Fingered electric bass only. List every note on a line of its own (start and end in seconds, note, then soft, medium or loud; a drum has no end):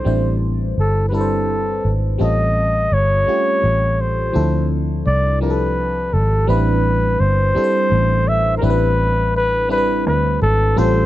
0.06 0.73 A1 medium
0.78 1.80 G1 medium
1.85 2.16 G#1 medium
2.21 2.87 A1 medium
2.92 3.23 G1 medium
3.28 muted fingered electric bass stroke soft
3.64 4.30 A1 medium
4.36 5.02 D2 loud
5.07 6.15 C2 medium
6.14 6.45 G#1 medium
6.49 7.16 A1 loud
7.20 7.52 G1 medium
7.56 muted fingered electric bass stroke soft
7.92 8.59 A1 loud
8.63 10.06 A1 loud
10.06 10.38 D2 medium
10.42 10.74 G#1 medium
10.78 11.06 A1 loud